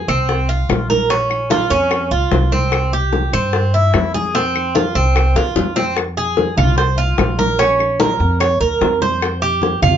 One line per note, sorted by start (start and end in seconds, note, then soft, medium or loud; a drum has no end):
0.08 0.65 C2 medium
0.08 0.48 C4 medium
0.08 high conga soft
0.08 claves medium
0.29 high bongo medium
0.29 high conga soft
0.49 0.88 F4 medium
0.49 high conga soft
0.69 1.65 A#1 medium
0.69 high bongo medium
0.69 low bongo medium
0.69 high conga medium
0.69 claves medium
0.90 1.10 A#4 medium
0.90 high conga medium
1.10 1.49 C#4 medium
1.10 high bongo medium
1.10 high conga soft
1.30 high bongo soft
1.30 high conga soft
1.30 claves medium
1.50 1.70 F4 medium
1.50 high bongo medium
1.50 high conga loud
1.70 2.08 F2 medium
1.70 2.10 C#4 medium
1.70 high bongo soft
1.70 high conga soft
1.91 high bongo medium
1.91 high conga soft
1.91 claves medium
2.11 2.30 C#2 medium
2.11 2.51 F4 medium
2.11 high conga soft
2.31 3.27 C2 medium
2.31 high bongo medium
2.31 low bongo medium
2.31 high conga medium
2.52 2.92 C4 medium
2.52 high bongo soft
2.52 high conga medium
2.72 high bongo medium
2.72 high conga soft
2.72 claves medium
2.92 3.32 G4 medium
2.92 high conga soft
3.13 high bongo medium
3.13 high conga medium
3.33 3.90 G2 loud
3.33 3.73 C4 medium
3.33 high conga soft
3.33 claves medium
3.53 high bongo medium
3.53 high conga soft
3.74 4.13 E4 medium
3.74 high conga soft
3.94 4.90 F2 medium
3.94 high bongo medium
3.94 low bongo medium
3.94 high conga medium
3.94 claves medium
4.14 4.34 G#4 medium
4.14 high conga medium
4.35 4.74 C4 medium
4.35 high bongo medium
4.35 high conga soft
4.55 high bongo soft
4.55 high conga soft
4.55 claves medium
4.75 4.95 F4 medium
4.75 high bongo medium
4.75 high conga medium
4.95 5.33 C2 loud
4.95 5.35 C4 medium
4.95 high bongo soft
4.95 high conga soft
5.16 high bongo medium
5.16 high conga soft
5.16 claves medium
5.35 5.55 E2 medium
5.35 5.75 F4 medium
5.35 high bongo medium
5.35 high conga soft
5.56 6.51 F2 medium
5.56 low bongo loud
5.56 high conga medium
5.76 5.96 C4 medium
5.76 low bongo medium
5.97 high bongo medium
5.97 high conga soft
5.97 claves medium
6.17 6.57 G#4 medium
6.17 high conga soft
6.37 high bongo medium
6.37 high conga medium
6.57 7.14 C2 medium
6.57 6.77 F4 medium
6.57 high conga soft
6.57 low conga medium
6.57 claves medium
6.78 6.98 C5 medium
6.78 high bongo medium
6.78 high conga soft
6.98 7.37 F4 medium
6.98 high conga soft
7.18 8.14 A#1 medium
7.18 high bongo medium
7.18 low bongo medium
7.18 high conga medium
7.18 claves medium
7.39 7.59 A#4 medium
7.39 high conga medium
7.59 7.98 C#4 medium
7.59 high bongo medium
7.59 high conga soft
7.79 high bongo soft
7.79 high conga soft
7.79 claves medium
8.00 8.39 A#4 medium
8.00 high bongo medium
8.00 high conga medium
8.20 8.58 F2 loud
8.20 high bongo soft
8.20 high conga soft
8.40 8.60 C#5 medium
8.40 high bongo medium
8.40 high conga soft
8.40 claves medium
8.61 8.79 D#2 medium
8.61 9.00 A#4 medium
8.61 high conga soft
8.81 9.76 F2 medium
8.81 high bongo medium
8.81 low bongo medium
8.81 high conga medium
9.02 9.41 C5 medium
9.02 high bongo soft
9.02 high conga medium
9.21 high bongo medium
9.21 high conga soft
9.21 claves medium
9.42 9.81 G4 medium
9.42 high conga soft
9.62 high bongo medium
9.62 high conga medium
9.82 9.97 F2 loud
9.82 9.97 F4 medium
9.82 high conga soft
9.82 low conga medium
9.82 claves medium